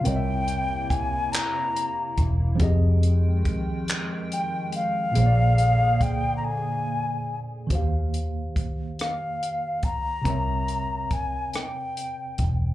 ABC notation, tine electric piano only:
X:1
M:6/8
L:1/8
Q:3/8=47
K:Eb
V:1 name="Tine electric piano"
[C,CB_de=e]6 | [F,CGAe]6 | [B,,B,Ac_d=d]6 | [E,B,_G=Gcf]6 |
[C,CB_d=e]6 |]